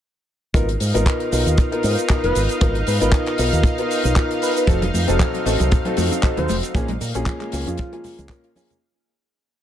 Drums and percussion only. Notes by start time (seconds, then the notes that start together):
0.54 kick, closed hi-hat, shaker
0.69 closed hi-hat
0.80 open hi-hat, shaker
0.95 closed hi-hat, shaker
1.06 kick, clap, closed hi-hat, shaker
1.20 closed hi-hat
1.32 open hi-hat, shaker
1.47 closed hi-hat, shaker
1.58 kick, closed hi-hat, shaker
1.72 closed hi-hat
1.83 open hi-hat, shaker
1.97 closed hi-hat, shaker
2.09 kick, clap, closed hi-hat, shaker
2.24 closed hi-hat
2.35 open hi-hat, shaker
2.49 closed hi-hat, shaker
2.61 kick, closed hi-hat, shaker
2.75 closed hi-hat
2.87 open hi-hat, shaker
3.01 closed hi-hat, shaker
3.12 kick, clap, closed hi-hat, shaker
3.26 clap, closed hi-hat
3.38 open hi-hat, shaker
3.53 closed hi-hat, shaker
3.63 kick, closed hi-hat, shaker
3.78 closed hi-hat
3.91 open hi-hat, shaker
4.04 closed hi-hat, shaker
4.16 kick, clap, closed hi-hat, shaker
4.31 closed hi-hat
4.42 open hi-hat, shaker
4.57 closed hi-hat, shaker
4.67 kick, closed hi-hat, cabasa, shaker
4.82 closed hi-hat, high conga, cabasa
4.94 open hi-hat, cabasa, shaker
5.08 closed hi-hat, low conga, cabasa, shaker
5.19 kick, clap, closed hi-hat, high conga, cabasa, shaker
5.33 closed hi-hat, cabasa
5.46 open hi-hat, cabasa, shaker
5.60 closed hi-hat, high conga, cabasa, shaker
5.72 kick, closed hi-hat, low conga, cabasa, shaker
5.85 closed hi-hat, cabasa
5.97 open hi-hat, cabasa, shaker
6.12 closed hi-hat, high conga, cabasa, shaker
6.23 kick, clap, closed hi-hat, cabasa, shaker
6.37 closed hi-hat, low conga, cabasa
6.48 open hi-hat, high conga, cabasa, shaker
6.63 closed hi-hat, cabasa, shaker
6.75 kick, closed hi-hat, cabasa, shaker
6.88 closed hi-hat, high conga, cabasa
7.01 open hi-hat, cabasa, shaker
7.15 closed hi-hat, cabasa, shaker
7.26 kick, clap, closed hi-hat, high conga, cabasa, shaker
7.40 clap, closed hi-hat, cabasa
7.52 open hi-hat, cabasa, shaker
7.67 closed hi-hat, high conga, cabasa, shaker
7.78 kick, closed hi-hat, cabasa, shaker
7.93 closed hi-hat, cabasa
8.04 open hi-hat, low conga, cabasa, shaker
8.18 closed hi-hat, high conga, cabasa, shaker
8.29 kick, clap, closed hi-hat, shaker
8.44 closed hi-hat, cabasa
8.55 open hi-hat, high conga, cabasa, shaker
8.70 closed hi-hat, low conga, cabasa, shaker